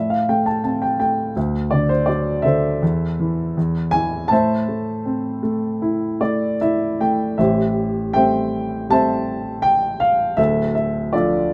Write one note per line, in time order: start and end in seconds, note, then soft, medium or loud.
0.00 1.32 A2 medium
0.00 0.61 C5 medium
0.00 0.45 A5 medium
0.10 0.27 F5 medium
0.29 0.98 A3 soft
0.29 0.45 G5 medium
0.46 0.62 A5 medium
0.64 1.34 C4 soft
0.64 0.81 A5 medium
0.82 0.98 G5 medium
1.00 1.35 A3 soft
1.00 1.33 G5 medium
1.36 2.78 D2 medium
1.71 2.43 D3 soft
1.71 1.90 D5 medium
1.89 2.08 C5 medium
2.06 2.80 F#3 soft
2.06 2.45 D5 medium
2.42 2.81 D3 soft
2.42 3.90 A4 medium
2.42 3.90 C5 medium
2.42 3.89 E5 medium
2.82 3.55 E2 medium
3.20 3.56 E3 medium
3.57 4.29 E2 medium
3.91 4.30 E3 medium
3.91 4.31 G#5 loud
4.28 7.35 A2 medium
4.28 6.57 C5 medium
4.28 6.55 A5 medium
4.32 6.57 E5 medium
4.68 5.41 A3 soft
5.05 6.56 C4 medium
5.43 6.19 A3 medium
5.82 6.60 E4 medium
6.20 6.99 A3 medium
6.20 6.58 D5 medium
6.61 7.37 E4 medium
6.61 6.98 E5 medium
7.00 7.38 A3 medium
7.00 7.36 G5 medium
7.38 10.34 A1 medium
7.38 10.34 A2 medium
7.38 8.87 G4 soft
7.38 8.14 C5 soft
7.38 8.11 E5 medium
8.13 8.88 G3 soft
8.13 8.89 A3 soft
8.13 8.89 C4 soft
8.13 8.91 C5 medium
8.13 8.91 E5 medium
8.13 8.92 G5 medium
8.90 9.62 G3 soft
8.90 9.62 A3 soft
8.90 9.62 C4 medium
8.90 10.35 C5 medium
8.90 10.35 E5 medium
8.90 9.66 A5 medium
9.62 10.01 G5 medium
10.00 10.39 F5 medium
10.37 11.53 D1 medium
10.37 11.53 D2 medium
10.37 11.13 A4 medium
10.37 10.73 E5 medium
10.75 11.14 E5 medium
11.13 11.53 F3 soft
11.13 11.53 A3 soft
11.13 11.53 D4 medium
11.13 11.53 F4 soft
11.13 11.53 A4 medium
11.13 11.53 D5 medium